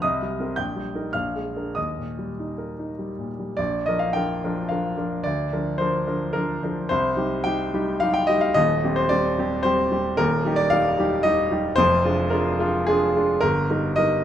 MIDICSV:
0, 0, Header, 1, 2, 480
1, 0, Start_track
1, 0, Key_signature, -3, "major"
1, 0, Tempo, 556070
1, 19, Time_signature, 3, 2, 24, 8
1, 980, Tempo, 619195
1, 2420, Tempo, 580271
1, 2910, Key_signature, -2, "major"
1, 3380, Tempo, 551471
1, 7700, Tempo, 535236
1, 8665, Key_signature, -3, "major"
1, 10580, Tempo, 551471
1, 12246, End_track
2, 0, Start_track
2, 0, Title_t, "Grand piano"
2, 0, Program_c, 0, 0
2, 0, Control_c, 0, 64, 127
2, 16, Note_on_c, 0, 87, 89
2, 29, Note_on_c, 0, 75, 64
2, 33, Control_c, 0, 64, 0
2, 34, Note_on_c, 0, 36, 64
2, 161, Control_c, 0, 64, 127
2, 193, Note_on_c, 0, 55, 42
2, 344, Note_on_c, 0, 60, 44
2, 350, Note_on_c, 0, 70, 46
2, 434, Note_off_c, 0, 55, 0
2, 461, Note_off_c, 0, 75, 0
2, 479, Note_off_c, 0, 60, 0
2, 482, Note_off_c, 0, 36, 0
2, 483, Note_off_c, 0, 70, 0
2, 485, Note_on_c, 0, 91, 76
2, 487, Note_off_c, 0, 87, 0
2, 495, Note_on_c, 0, 79, 55
2, 499, Note_on_c, 0, 34, 52
2, 502, Control_c, 0, 64, 0
2, 657, Note_on_c, 0, 55, 43
2, 666, Control_c, 0, 64, 127
2, 820, Note_on_c, 0, 63, 42
2, 824, Note_on_c, 0, 70, 45
2, 916, Note_off_c, 0, 55, 0
2, 949, Note_off_c, 0, 79, 0
2, 968, Note_off_c, 0, 63, 0
2, 970, Note_off_c, 0, 70, 0
2, 971, Note_off_c, 0, 34, 0
2, 974, Note_on_c, 0, 89, 74
2, 978, Note_off_c, 0, 91, 0
2, 984, Note_on_c, 0, 77, 59
2, 990, Note_on_c, 0, 34, 56
2, 994, Control_c, 0, 64, 0
2, 1136, Control_c, 0, 64, 127
2, 1151, Note_on_c, 0, 56, 42
2, 1312, Note_on_c, 0, 62, 35
2, 1314, Note_on_c, 0, 70, 39
2, 1407, Note_off_c, 0, 56, 0
2, 1438, Note_off_c, 0, 77, 0
2, 1455, Note_on_c, 0, 87, 70
2, 1456, Note_off_c, 0, 62, 0
2, 1457, Note_off_c, 0, 34, 0
2, 1457, Note_off_c, 0, 70, 0
2, 1464, Note_off_c, 0, 89, 0
2, 1464, Note_on_c, 0, 75, 52
2, 1470, Note_on_c, 0, 39, 51
2, 1484, Control_c, 0, 64, 0
2, 1640, Note_on_c, 0, 46, 38
2, 1646, Control_c, 0, 64, 127
2, 1794, Note_on_c, 0, 55, 36
2, 1891, Note_off_c, 0, 46, 0
2, 1957, Note_on_c, 0, 63, 37
2, 2046, Note_off_c, 0, 55, 0
2, 2101, Note_on_c, 0, 70, 39
2, 2205, Note_off_c, 0, 63, 0
2, 2264, Note_on_c, 0, 63, 42
2, 2355, Note_off_c, 0, 70, 0
2, 2417, Note_on_c, 0, 55, 41
2, 2519, Note_off_c, 0, 63, 0
2, 2580, Note_on_c, 0, 46, 36
2, 2634, Note_off_c, 0, 75, 0
2, 2662, Note_off_c, 0, 87, 0
2, 2683, Note_off_c, 0, 55, 0
2, 2753, Note_on_c, 0, 55, 37
2, 2844, Note_off_c, 0, 46, 0
2, 2879, Note_off_c, 0, 39, 0
2, 2894, Note_on_c, 0, 74, 90
2, 2909, Note_on_c, 0, 34, 67
2, 2911, Note_off_c, 0, 55, 0
2, 2928, Control_c, 0, 64, 0
2, 3053, Control_c, 0, 64, 127
2, 3136, Note_on_c, 0, 75, 87
2, 3138, Note_off_c, 0, 34, 0
2, 3138, Note_off_c, 0, 74, 0
2, 3152, Note_on_c, 0, 53, 49
2, 3155, Note_on_c, 0, 62, 45
2, 3158, Note_on_c, 0, 70, 54
2, 3247, Note_on_c, 0, 77, 91
2, 3259, Note_off_c, 0, 75, 0
2, 3360, Note_off_c, 0, 53, 0
2, 3362, Note_off_c, 0, 62, 0
2, 3362, Note_on_c, 0, 79, 90
2, 3363, Note_off_c, 0, 70, 0
2, 3371, Note_off_c, 0, 77, 0
2, 3381, Note_on_c, 0, 62, 45
2, 3383, Note_on_c, 0, 53, 47
2, 3387, Note_on_c, 0, 70, 52
2, 3596, Note_off_c, 0, 62, 0
2, 3598, Note_off_c, 0, 53, 0
2, 3600, Note_off_c, 0, 70, 0
2, 3628, Note_on_c, 0, 53, 52
2, 3631, Note_on_c, 0, 62, 50
2, 3637, Note_on_c, 0, 70, 54
2, 3837, Note_off_c, 0, 53, 0
2, 3839, Note_off_c, 0, 62, 0
2, 3842, Note_off_c, 0, 70, 0
2, 3844, Note_on_c, 0, 77, 78
2, 3847, Note_off_c, 0, 79, 0
2, 3862, Note_on_c, 0, 53, 49
2, 3866, Note_on_c, 0, 62, 51
2, 3868, Note_on_c, 0, 70, 56
2, 4075, Note_off_c, 0, 53, 0
2, 4077, Note_off_c, 0, 62, 0
2, 4078, Note_off_c, 0, 70, 0
2, 4092, Note_on_c, 0, 62, 46
2, 4093, Note_on_c, 0, 53, 48
2, 4096, Note_on_c, 0, 70, 51
2, 4309, Note_off_c, 0, 62, 0
2, 4310, Note_off_c, 0, 53, 0
2, 4311, Note_off_c, 0, 70, 0
2, 4322, Note_on_c, 0, 74, 91
2, 4329, Note_off_c, 0, 77, 0
2, 4339, Note_on_c, 0, 38, 70
2, 4351, Control_c, 0, 64, 0
2, 4511, Control_c, 0, 64, 127
2, 4568, Note_off_c, 0, 38, 0
2, 4576, Note_on_c, 0, 53, 50
2, 4577, Note_on_c, 0, 62, 50
2, 4579, Note_on_c, 0, 70, 54
2, 4789, Note_off_c, 0, 53, 0
2, 4789, Note_off_c, 0, 62, 0
2, 4790, Note_off_c, 0, 70, 0
2, 4796, Note_on_c, 0, 72, 88
2, 4804, Note_off_c, 0, 74, 0
2, 4810, Note_on_c, 0, 53, 52
2, 4813, Note_on_c, 0, 62, 49
2, 4820, Note_on_c, 0, 70, 52
2, 5027, Note_off_c, 0, 53, 0
2, 5029, Note_off_c, 0, 62, 0
2, 5033, Note_off_c, 0, 70, 0
2, 5047, Note_on_c, 0, 53, 54
2, 5051, Note_on_c, 0, 62, 54
2, 5056, Note_on_c, 0, 70, 56
2, 5260, Note_off_c, 0, 70, 0
2, 5267, Note_off_c, 0, 53, 0
2, 5269, Note_off_c, 0, 62, 0
2, 5273, Note_on_c, 0, 70, 89
2, 5286, Note_off_c, 0, 72, 0
2, 5294, Note_on_c, 0, 53, 52
2, 5297, Note_on_c, 0, 62, 55
2, 5511, Note_off_c, 0, 53, 0
2, 5512, Note_off_c, 0, 62, 0
2, 5532, Note_off_c, 0, 70, 0
2, 5537, Note_on_c, 0, 53, 54
2, 5537, Note_on_c, 0, 62, 51
2, 5545, Note_on_c, 0, 70, 58
2, 5750, Note_off_c, 0, 62, 0
2, 5751, Note_off_c, 0, 53, 0
2, 5755, Note_off_c, 0, 70, 0
2, 5763, Note_on_c, 0, 72, 98
2, 5779, Note_on_c, 0, 36, 76
2, 5788, Control_c, 0, 64, 0
2, 5934, Control_c, 0, 64, 127
2, 6003, Note_on_c, 0, 63, 52
2, 6007, Note_off_c, 0, 36, 0
2, 6007, Note_on_c, 0, 55, 53
2, 6011, Note_on_c, 0, 67, 57
2, 6225, Note_off_c, 0, 63, 0
2, 6227, Note_off_c, 0, 55, 0
2, 6229, Note_off_c, 0, 67, 0
2, 6238, Note_on_c, 0, 79, 98
2, 6249, Note_off_c, 0, 72, 0
2, 6254, Note_on_c, 0, 55, 52
2, 6261, Note_on_c, 0, 63, 52
2, 6261, Note_on_c, 0, 67, 58
2, 6474, Note_off_c, 0, 55, 0
2, 6478, Note_off_c, 0, 63, 0
2, 6478, Note_off_c, 0, 67, 0
2, 6499, Note_on_c, 0, 55, 56
2, 6504, Note_on_c, 0, 63, 55
2, 6507, Note_on_c, 0, 67, 61
2, 6718, Note_off_c, 0, 55, 0
2, 6721, Note_off_c, 0, 63, 0
2, 6723, Note_off_c, 0, 67, 0
2, 6728, Note_on_c, 0, 77, 111
2, 6734, Note_off_c, 0, 79, 0
2, 6742, Note_on_c, 0, 55, 55
2, 6746, Note_on_c, 0, 63, 61
2, 6751, Note_on_c, 0, 67, 62
2, 6847, Note_on_c, 0, 79, 98
2, 6856, Note_off_c, 0, 77, 0
2, 6959, Note_off_c, 0, 55, 0
2, 6961, Note_off_c, 0, 63, 0
2, 6962, Note_on_c, 0, 75, 100
2, 6964, Note_off_c, 0, 67, 0
2, 6975, Note_off_c, 0, 79, 0
2, 6981, Note_on_c, 0, 55, 58
2, 6981, Note_on_c, 0, 63, 54
2, 6987, Note_on_c, 0, 67, 59
2, 7084, Note_on_c, 0, 77, 99
2, 7092, Note_off_c, 0, 75, 0
2, 7198, Note_off_c, 0, 55, 0
2, 7198, Note_off_c, 0, 63, 0
2, 7201, Note_off_c, 0, 67, 0
2, 7201, Note_on_c, 0, 75, 108
2, 7209, Note_on_c, 0, 27, 76
2, 7213, Note_off_c, 0, 77, 0
2, 7220, Note_on_c, 0, 39, 83
2, 7236, Control_c, 0, 64, 0
2, 7390, Control_c, 0, 64, 127
2, 7447, Note_off_c, 0, 27, 0
2, 7453, Note_off_c, 0, 39, 0
2, 7458, Note_on_c, 0, 55, 61
2, 7464, Note_on_c, 0, 60, 59
2, 7467, Note_on_c, 0, 67, 62
2, 7563, Note_on_c, 0, 72, 95
2, 7570, Note_off_c, 0, 75, 0
2, 7674, Note_off_c, 0, 55, 0
2, 7677, Note_on_c, 0, 74, 98
2, 7678, Note_off_c, 0, 60, 0
2, 7679, Note_off_c, 0, 67, 0
2, 7691, Note_off_c, 0, 72, 0
2, 7693, Note_on_c, 0, 55, 54
2, 7700, Note_on_c, 0, 60, 60
2, 7701, Note_on_c, 0, 67, 61
2, 7915, Note_off_c, 0, 55, 0
2, 7919, Note_off_c, 0, 60, 0
2, 7920, Note_off_c, 0, 67, 0
2, 7939, Note_on_c, 0, 55, 62
2, 7946, Note_on_c, 0, 60, 64
2, 7949, Note_on_c, 0, 67, 69
2, 8157, Note_off_c, 0, 55, 0
2, 8158, Note_on_c, 0, 72, 105
2, 8161, Note_off_c, 0, 60, 0
2, 8162, Note_off_c, 0, 67, 0
2, 8172, Note_off_c, 0, 74, 0
2, 8178, Note_on_c, 0, 55, 61
2, 8179, Note_on_c, 0, 60, 63
2, 8182, Note_on_c, 0, 67, 73
2, 8397, Note_off_c, 0, 55, 0
2, 8398, Note_off_c, 0, 60, 0
2, 8400, Note_off_c, 0, 67, 0
2, 8417, Note_on_c, 0, 55, 59
2, 8421, Note_on_c, 0, 60, 59
2, 8425, Note_on_c, 0, 67, 63
2, 8637, Note_off_c, 0, 55, 0
2, 8639, Note_off_c, 0, 60, 0
2, 8641, Note_off_c, 0, 67, 0
2, 8647, Note_on_c, 0, 70, 112
2, 8652, Note_on_c, 0, 27, 84
2, 8653, Note_off_c, 0, 72, 0
2, 8664, Note_on_c, 0, 39, 86
2, 8679, Control_c, 0, 64, 0
2, 8835, Control_c, 0, 64, 127
2, 8888, Note_off_c, 0, 27, 0
2, 8894, Note_on_c, 0, 55, 58
2, 8895, Note_off_c, 0, 39, 0
2, 8905, Note_on_c, 0, 63, 59
2, 8908, Note_on_c, 0, 67, 68
2, 8996, Note_on_c, 0, 74, 108
2, 9012, Note_off_c, 0, 70, 0
2, 9111, Note_off_c, 0, 55, 0
2, 9117, Note_off_c, 0, 63, 0
2, 9119, Note_off_c, 0, 67, 0
2, 9120, Note_on_c, 0, 77, 121
2, 9127, Note_off_c, 0, 74, 0
2, 9140, Note_on_c, 0, 55, 58
2, 9143, Note_on_c, 0, 63, 59
2, 9146, Note_on_c, 0, 67, 62
2, 9354, Note_off_c, 0, 55, 0
2, 9356, Note_off_c, 0, 63, 0
2, 9358, Note_off_c, 0, 67, 0
2, 9376, Note_on_c, 0, 55, 65
2, 9385, Note_on_c, 0, 63, 62
2, 9387, Note_on_c, 0, 67, 72
2, 9592, Note_off_c, 0, 55, 0
2, 9595, Note_on_c, 0, 75, 105
2, 9597, Note_off_c, 0, 63, 0
2, 9598, Note_off_c, 0, 67, 0
2, 9607, Note_off_c, 0, 77, 0
2, 9611, Note_on_c, 0, 55, 68
2, 9614, Note_on_c, 0, 63, 67
2, 9617, Note_on_c, 0, 67, 70
2, 9830, Note_off_c, 0, 55, 0
2, 9832, Note_off_c, 0, 63, 0
2, 9834, Note_off_c, 0, 67, 0
2, 9848, Note_on_c, 0, 55, 62
2, 9850, Note_on_c, 0, 63, 60
2, 9857, Note_on_c, 0, 67, 64
2, 10067, Note_on_c, 0, 72, 124
2, 10069, Note_off_c, 0, 55, 0
2, 10070, Note_off_c, 0, 63, 0
2, 10074, Note_off_c, 0, 67, 0
2, 10080, Note_on_c, 0, 29, 79
2, 10086, Note_on_c, 0, 41, 93
2, 10088, Note_off_c, 0, 75, 0
2, 10115, Control_c, 0, 64, 0
2, 10258, Control_c, 0, 64, 127
2, 10321, Note_off_c, 0, 29, 0
2, 10325, Note_off_c, 0, 41, 0
2, 10330, Note_on_c, 0, 56, 62
2, 10333, Note_on_c, 0, 62, 63
2, 10334, Note_on_c, 0, 65, 64
2, 10551, Note_off_c, 0, 56, 0
2, 10553, Note_off_c, 0, 62, 0
2, 10553, Note_off_c, 0, 65, 0
2, 10556, Note_on_c, 0, 70, 84
2, 10564, Note_off_c, 0, 72, 0
2, 10570, Note_on_c, 0, 56, 62
2, 10575, Note_on_c, 0, 62, 58
2, 10578, Note_on_c, 0, 65, 68
2, 10788, Note_off_c, 0, 56, 0
2, 10791, Note_off_c, 0, 62, 0
2, 10793, Note_off_c, 0, 65, 0
2, 10809, Note_on_c, 0, 56, 65
2, 10817, Note_on_c, 0, 62, 65
2, 10818, Note_on_c, 0, 65, 75
2, 11030, Note_off_c, 0, 56, 0
2, 11035, Note_off_c, 0, 62, 0
2, 11035, Note_off_c, 0, 65, 0
2, 11048, Note_off_c, 0, 70, 0
2, 11048, Note_on_c, 0, 68, 106
2, 11059, Note_on_c, 0, 56, 64
2, 11066, Note_on_c, 0, 62, 63
2, 11068, Note_on_c, 0, 65, 70
2, 11277, Note_off_c, 0, 56, 0
2, 11281, Note_off_c, 0, 62, 0
2, 11282, Note_off_c, 0, 65, 0
2, 11300, Note_on_c, 0, 56, 61
2, 11310, Note_on_c, 0, 62, 62
2, 11311, Note_on_c, 0, 65, 64
2, 11515, Note_off_c, 0, 56, 0
2, 11518, Note_on_c, 0, 70, 113
2, 11520, Note_off_c, 0, 62, 0
2, 11521, Note_off_c, 0, 65, 0
2, 11534, Note_off_c, 0, 68, 0
2, 11535, Note_on_c, 0, 31, 85
2, 11557, Control_c, 0, 64, 0
2, 11691, Control_c, 0, 64, 127
2, 11765, Note_off_c, 0, 70, 0
2, 11767, Note_off_c, 0, 31, 0
2, 11775, Note_on_c, 0, 55, 62
2, 11778, Note_on_c, 0, 63, 63
2, 11778, Note_on_c, 0, 70, 64
2, 11991, Note_off_c, 0, 55, 0
2, 11992, Note_off_c, 0, 63, 0
2, 11993, Note_off_c, 0, 70, 0
2, 11998, Note_on_c, 0, 75, 99
2, 12013, Note_on_c, 0, 55, 57
2, 12016, Note_on_c, 0, 63, 61
2, 12023, Note_on_c, 0, 70, 65
2, 12236, Note_off_c, 0, 55, 0
2, 12237, Note_off_c, 0, 63, 0
2, 12241, Note_off_c, 0, 70, 0
2, 12246, Note_off_c, 0, 75, 0
2, 12246, End_track
0, 0, End_of_file